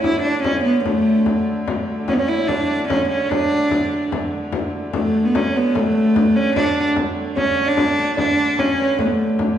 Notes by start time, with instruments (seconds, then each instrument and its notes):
Already playing: hurdy-gurdy D3 A3, harp A4 B4 C#5
0.03 viola da gamba E4, harp E5, frame drum
0.22 viola da gamba D4
0.26 harp D5
0.43 viola da gamba C#4, harp C#5, frame drum
0.64 viola da gamba B3
0.84 viola da gamba A3, harp A4, frame drum
1.26 frame drum
1.68 frame drum
2.08 viola da gamba C#4, harp C#5, frame drum
2.14 viola da gamba B3
2.19 viola da gamba C#4, harp C#5
2.28 viola da gamba E4, harp E5
2.47 viola da gamba D4, harp D5, frame drum
2.88 viola da gamba C#4, harp C#5, frame drum
3.09 viola da gamba C#4, harp C#5
3.29 viola da gamba D4, harp D5, frame drum
3.71 frame drum
4.12 frame drum
4.52 hurdy-gurdy D3 A3, frame drum
4.93 viola da gamba A3, harp A4, frame drum
5.25 viola da gamba B3
5.35 viola da gamba C#4, harp C#5, frame drum
5.55 viola da gamba B3, harp B4, frame drum
5.75 viola da gamba A3, harp A4, frame drum
6.15 harp B4, frame drum
6.36 viola da gamba C#4, harp C#5
6.56 viola da gamba D4, harp D5, frame drum
6.77 frame drum
6.96 frame drum
7.36 viola da gamba C#4, harp C#5, frame drum
7.66 viola da gamba D4, harp D5
7.77 frame drum
7.98 frame drum
8.17 viola da gamba D4, harp D5, frame drum
8.58 viola da gamba C#4, harp C#5, frame drum
8.78 harp B4
8.99 viola da gamba A3, harp A4, frame drum
9.05 viola da gamba B3
9.12 viola da gamba A3, harp A4
9.39 hurdy-gurdy D3 A3, frame drum